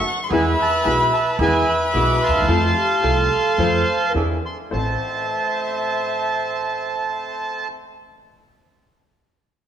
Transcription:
Already playing: C#6
0.07 F#5
0.24 C6
0.29 E2 E3 G#3 B3 E4 G#4 E5 B5
0.33 B4 G#5
0.62 A5
0.83 B1 B2 E3 G#3 B3 E4 G#4 B5
1.13 A5
1.38 E2 E3 G#3 B3 E4 G#4 E5 G#5 B5
1.42 B4
1.69 B5
1.92 B1 B2 E3 G#3 B3 E4 G#4
1.96 B3 D6
2.23 F5 A5 C6
2.28 D2
2.36 D#2
2.42 E2
2.48 F2 F3 A3 C4 F4 A4 A5
2.77 G4
3.02 C2 C3 F3 A3 C4 F4 A4
3.06 F5
3.58 F2 F3 A3 C4 F4 A4 C5
4.14 E2 E3 B3 D4 E4 G#4
4.46 C6
4.71 A1 C4 A4 C5 E5 A5

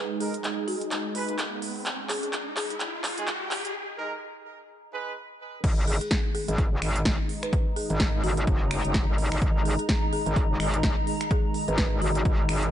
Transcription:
Already playing: G#3 D#4 G#4 D#5 A#5, riser
0.20 G#3 D#4 G#4 A#4, open hi-hat
0.34 closed hi-hat
0.44 clap, closed hi-hat
0.68 F#4, open hi-hat
0.81 closed hi-hat
0.91 clap, closed hi-hat
1.15 G#3 D#4 B4, open hi-hat
1.29 closed hi-hat
1.39 clap, closed hi-hat
1.62 open hi-hat
1.76 open hi-hat
1.86 clap, closed hi-hat
2.09 G#4, clap, open hi-hat
2.23 G#4, closed hi-hat
2.33 clap, closed hi-hat
2.57 G#4, clap, open hi-hat
2.70 G#4, closed hi-hat
2.80 clap, closed hi-hat
3.04 clap, open hi-hat
3.18 G#3 D#4 G#4, closed hi-hat
3.28 clap, closed hi-hat
3.51 clap, open hi-hat
3.65 closed hi-hat
3.98 G#3 D#4 A#4
4.93 G#3 D#4 B4
5.64 G#1 D#3 G#3 D#4 G#4, kick, closed hi-hat, crash
5.87 G#4, open hi-hat
6.01 G#4, closed hi-hat
6.11 kick, snare, closed hi-hat
6.17 D#5
6.28 A#5
6.35 G#4, open hi-hat
6.48 G#1 G#4, closed hi-hat
6.58 kick, closed hi-hat
6.72 F#1
6.82 G#1, finger snap, open hi-hat
6.96 closed hi-hat
7.05 kick, snare, closed hi-hat
7.29 open hi-hat
7.43 B4, finger snap, closed hi-hat
7.53 kick, closed hi-hat
7.76 G#4, open hi-hat
7.90 G#1, closed hi-hat
8.00 kick, snare, closed hi-hat
8.24 G#1 F#4, open hi-hat
8.37 closed hi-hat
8.47 F#1, kick, closed hi-hat
8.71 finger snap, open hi-hat
8.85 F#1, closed hi-hat
8.94 kick, snare, closed hi-hat
9.08 G#1
9.18 open hi-hat
9.32 G#1, finger snap, open hi-hat
9.42 G#1, kick, closed hi-hat
9.65 G#4, open hi-hat
9.79 G#4, closed hi-hat
9.89 kick, snare, closed hi-hat
10.13 G#4, open hi-hat
10.26 G#1 G#4, closed hi-hat
10.36 kick, closed hi-hat
10.50 F#1
10.60 G#1, finger snap, open hi-hat
10.74 closed hi-hat
10.83 kick, snare, closed hi-hat
11.07 open hi-hat
11.21 finger snap, closed hi-hat
11.31 G#4, kick, closed hi-hat
11.54 open hi-hat
11.68 G#1 B4, closed hi-hat
11.78 B4, kick, snare, closed hi-hat
12.02 G#1 F#4, open hi-hat
12.15 F#4, closed hi-hat
12.25 G#1, kick, closed hi-hat
12.49 G#1, finger snap, open hi-hat
12.63 closed hi-hat

